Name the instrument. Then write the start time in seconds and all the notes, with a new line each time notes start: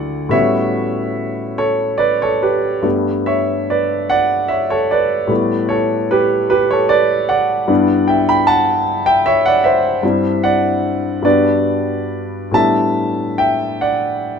grand piano
Already playing: D2 D3 A3 E4 F#4 D5 F#5
0.29 A2 G3 B3 C#4 F#4 C#5 E5
1.58 A4 C#5
1.98 B4 D5
2.22 A4 C#5
2.42 G4 B4
2.82 G2 G3 A3 B3 G4
3.26 C#5 E5
3.70 B4 D5
4.10 D5 F#5
4.48 C#5 E5
4.70 A4 C#5
4.91 B4 D5
5.27 A2 G3 A3 B3
5.32 E4
5.69 A4 C#5
6.11 G4 B4
6.50 G4 B4
6.71 A4 C#5
6.89 B4 D5
7.29 D5 F#5
7.67 G2 G3 B3 D4 E4
8.08 E5 G5
8.29 G5 B5
8.47 F#5 A5
9.06 E5 G5
9.26 C#5 E5
9.46 D5 F#5
9.64 C5 E5
10.03 G2 G3 C4 D4 E4
10.44 D5 F#5
11.22 G2 G3 B3 D4 F#4 B4 D5
12.51 A2 G3 B3 D4 E4 E5 A5
13.38 E5 G5
13.81 D5 F#5